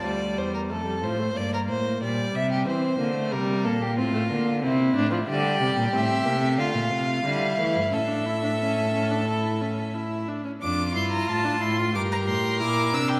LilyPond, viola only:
\new Staff \with { instrumentName = "Viola" } { \time 4/4 \key d \phrygian \tempo 4 = 91 g4 a16 g16 f16 a16 bes4 g4 | c'8 bes16 a16 g8 bes8 c'16 a16 bes8 c'8 d'16 f16 | \key d \minor g4 c'8 bes16 a4~ a16 g8 a8 | cis'16 d'16 e'16 d'16 cis'8 cis'16 d'16 e'8 cis'8 e'8 d'16 cis'16 |
d'8 e'8 f'16 d'16 e'16 f'16 g'4 e'8 d'8 | }